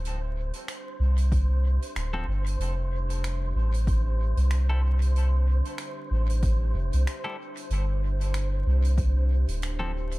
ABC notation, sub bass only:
X:1
M:4/4
L:1/16
Q:"Swing 16ths" 1/4=94
K:Flyd
V:1 name="Sub bass" clef=bass
D,,,3 z3 C,,4- C,, z D,,,2 G,,,2 | F,,,6 A,,,4- A,,, C,,4- C,,- | C,,3 z3 A,,,4 F,,, C,, z4 | G,,,6 C,,4- C,, D,,,4- D,,, |]